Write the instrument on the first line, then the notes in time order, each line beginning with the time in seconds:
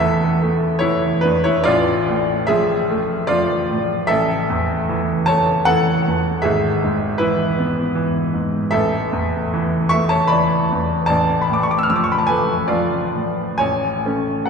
grand piano
Already playing: A1 E2 E5 F#5
0.00 E3 A4
0.42 A3
0.79 E4 C#5
0.83 E3
1.21 E2 D4 B4
1.44 E4 C#5
1.64 A1 F4 D5
2.09 A2
2.47 F3 G#4 E5
2.90 A3
3.27 F3 F4 D5
3.71 A2
4.07 A1 A4 E5
4.50 E2
4.89 E3
5.26 A3 C#5 A5
5.65 E3 A4 F#5
6.08 E2
6.42 G#1 G#4 E5
6.84 G#2
7.18 E3 E4 B4
7.59 B3
7.95 E3
8.34 G#2
8.71 A1 A4 E5
9.13 E2
9.54 E3
9.89 A3 E5 C#6
10.09 C#5 A5
10.28 E3 D5 B5
10.72 E2
11.06 A1 D5 A5
11.42 B5
11.50 A2 D6
11.63 C#6
11.71 D6
11.79 E6
11.83 F6
11.90 F3 E6
11.96 D6
12.04 C#6
12.12 B5
12.18 A5
12.27 B4 G#5
12.31 A3
12.68 F3 F4 D5
13.15 A2
13.58 A1 C#5 G#5
14.06 A3 C#4
14.46 F#5